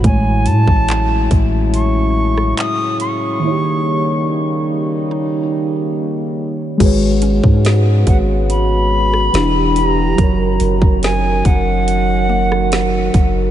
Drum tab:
CC |----------------|----------------|x---------------|----------------|
HH |x-x-x-x-x---x-x-|----------------|x-x-x-x-x---x-x-|x-x-x-x-x---x-x-|
CP |----x-------x---|----------------|----------------|----------------|
SD |-----------r----|----------------|----o------ro---|----o------ro---|
BD |o--o--o---------|----------------|o--o--o---------|o--o--o-------o-|